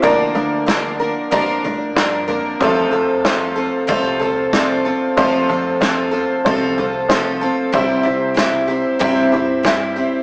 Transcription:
<<
  \new Staff \with { instrumentName = "Twelve-string acoustic guitar" } { \time 4/4 \key f \major \tempo 4 = 94 <d f bes d' bes'>8 <bes d' bes'>8 <f bes d' bes'>8 <bes d' bes'>8 <d f bes d' bes'>8 <d' bes'>8 <f bes d' bes'>8 <bes d' bes'>8 | <f c' f' a'>8 <c' f' a'>8 <f c' f' a'>8 <c' f' a'>8 <f c' f' a'>8 <c' f' a'>8 <f c' f' a'>8 <c' f' a'>8 | <f c' f' a'>8 <c' f' a'>8 <f c' f' a'>8 <c' f' a'>8 <f c' f' a'>8 <c' f' a'>8 <f c' f' a'>8 <c' f' a'>8 | <c g c' e' g'>8 <c' e' g'>8 <g c' e' g'>8 <c' e' g'>8 <c g c' e' g'>8 <c' e' g'>8 <g c' e' g'>8 <c' e' g'>8 | }
  \new Staff \with { instrumentName = "Upright piano" } { \time 4/4 \key f \major <f bes d' bes' d''>4 <f bes d' bes' d''>4 <f bes d' bes' d''>4 <f bes d' bes' d''>4 | <f a c' a' c''>4 <f a c' a' c''>4 <f a c' a' c''>4 <f a c' a' d''>4 | <f a c' a' c''>4 <f a c' a' c''>4 <f a c' a' c''>4 <f a c' a' c''>4 | <g c' e' c'' e''>4 <g c' e' c'' e''>4 <g c' e' c'' e''>4 <g c' e' c'' e''>4 | }
  \new Staff \with { instrumentName = "Upright piano" } { \clef bass \time 4/4 \key f \major <d, d>1 | <f,, f,>1 | <f,, f,>1 | <c, c>1 | }
  \new Staff \with { instrumentName = "Upright bass" } { \clef bass \time 4/4 \key f \major d,8 d,4. f,8 a,8 g,8 f,8 | f,8 f,4. c,2 | f,8 f,4. c,2 | c,8 c,4. g,2 | }
  \new DrumStaff \with { instrumentName = "Drums" } \drummode { \time 4/4 <bd tomfh>4 <bd sn>4 <bd tomfh>8 tomfh8 <bd sn>8 tomfh8 | <bd tomfh>4 <bd sn>4 <bd tomfh>8 tomfh8 <bd sn>4 | <bd tomfh>4 <bd sn>4 <bd tomfh>8 tomfh8 <bd sn>4 | <bd tomfh>4 <bd sn>4 <bd tomfh>8 tomfh8 <bd sn>4 | }
>>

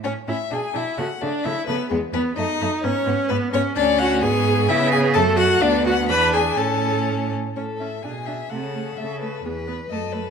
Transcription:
<<
  \new Staff \with { instrumentName = "Violin" } { \time 2/4 \key a \major \tempo 4 = 129 cis''8 e''8 gis''8 e''8 | fis''8 d''8 e''8 b'8 | gis'8 b'8 dis''4 | cis''4 b'8 cis''8 |
d''8 fis''8 gis''4 | e''8 gis''8 a''8 fis''8 | d''8 fis''8 b''8 gis''8 | a''4. r8 |
cis''8 e''8 gis''8 e''8 | fis''4 e''8 b'8 | gis'8 b'8 dis''8 b'8 | }
  \new Staff \with { instrumentName = "Viola" } { \time 2/4 \key a \major cis'8 e'8 gis'8 e'8 | fis'8 d'8 e'8 b8 | gis8 b8 dis'4 | cis'4 b8 cis'8 |
d'8 fis'8 gis'4 | e'8 gis'8 a'8 fis'8 | d'8 fis'8 b'8 gis'8 | a'4. r8 |
cis'8 cis'8 d'8 d'8 | a8 a8 a8 a8 | b8 b8 a8 a8 | }
  \new Staff \with { instrumentName = "Violin" } { \time 2/4 \key a \major cis'8 cis'8 d'8 d'8 | a8 a8 a8 a8 | b8 b8 a8 a8 | b8 b8 b8 b8 |
cis'4 b4 | b4 a4 | b4 d'4 | cis'4. r8 |
a'4 gis'4 | a'2 | b'4 a'4 | }
  \new Staff \with { instrumentName = "Cello" } { \clef bass \time 2/4 \key a \major a,8 a,8 b,8 b,8 | cis8 cis8 cis8 cis8 | e,8 e,8 fis,8 fis,8 | gis,8 gis,8 gis,8 gis,8 |
d,4 gis,4 | cis4 fis,4 | d,4 e,4 | a,4. r8 |
a,4 b,4 | cis4 cis4 | e,4 fis,4 | }
>>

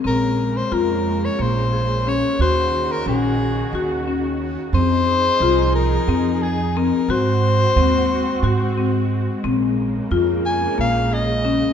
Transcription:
<<
  \new Staff \with { instrumentName = "Soprano saxophone" } { \time 7/8 \key bes \minor \tempo 4 = 89 bes'8. c''16 bes'8. des''16 c''4 des''8 | c''8. bes'16 aes'4. r4 | c''4. bes'4 aes'8 bes'8 | c''2. r8 |
r4. aes''8 f''8 ees''4 | }
  \new Staff \with { instrumentName = "Marimba" } { \time 7/8 \key bes \minor c'4 f'4 bes8 aes'8 des'8 | ges'4 des'4 ges'8 des'4 | c'4 f'4 c'8 aes'8 c'8 | ges'4 c'4 ges'8 c'4 |
c'4 f'4 bes8 aes'8 des'8 | }
  \new Staff \with { instrumentName = "String section" } { \time 7/8 \key bes \minor << { <des bes>2.~ <des bes>8 | ges'2.~ ges'8 | <ees' aes'>2.~ <ees' aes'>8 | <c' ges'>2.~ <c' ges'>8 |
<des bes>2.~ <des bes>8 | } \\ { aes2.~ aes8 | ees2.~ ees8 | f2.~ f8 | aes2.~ aes8~ |
aes2.~ aes8 | } >> }
  \new Staff \with { instrumentName = "Upright bass" } { \clef bass \time 7/8 \key bes \minor bes,,4 f,4 bes,,4. | ees,4 bes,,4 ees,4. | f,4 c,4 f,4. | aes,4 ees,4 aes,4. |
bes,,4 f,4 bes,,4. | }
>>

